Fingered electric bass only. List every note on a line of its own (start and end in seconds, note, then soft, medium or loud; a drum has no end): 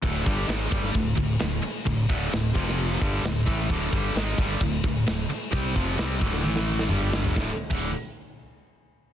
0.04 0.25 D1 loud
0.27 0.48 G1 medium
0.49 0.70 G#1 medium
0.72 0.93 G1 loud
0.95 1.16 D1 medium
1.17 1.39 D1 medium
1.41 1.62 D1 medium
1.65 muted fingered electric bass stroke soft
1.87 2.08 D1 medium
2.09 2.31 D1 medium
2.33 2.54 D1 medium
2.56 2.98 F1 loud
3.01 3.23 G1 medium
3.23 3.45 D1 medium
3.47 3.69 A1 medium
3.71 3.92 D1 medium
3.93 4.14 G1 medium
4.15 4.37 G#1 medium
4.39 4.60 G1 loud
4.60 4.82 D1 medium
4.84 5.05 D1 medium
5.08 5.29 D1 medium
5.30 muted fingered electric bass stroke soft
5.53 5.75 C2 medium
5.76 5.98 F1 medium
5.99 6.20 C2 medium
6.22 6.43 D1 loud
6.45 6.88 A1 medium
6.91 7.34 G1 medium
7.36 7.49 D1 medium
7.71 7.92 D1 medium